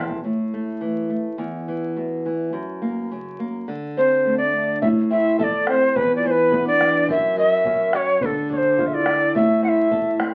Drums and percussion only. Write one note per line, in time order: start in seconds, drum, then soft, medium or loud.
0.10 bombo low medium
4.82 bombo low medium
5.39 bombo low medium
5.67 bombo rim soft
5.96 bombo low medium
6.52 bombo low medium
6.81 bombo rim soft
7.08 bombo low medium
7.65 bombo low medium
7.93 bombo rim soft
8.21 bombo low medium
8.50 bombo low medium
8.78 bombo low medium
9.06 bombo rim soft
9.35 bombo low medium
9.91 bombo low medium
10.20 bombo rim soft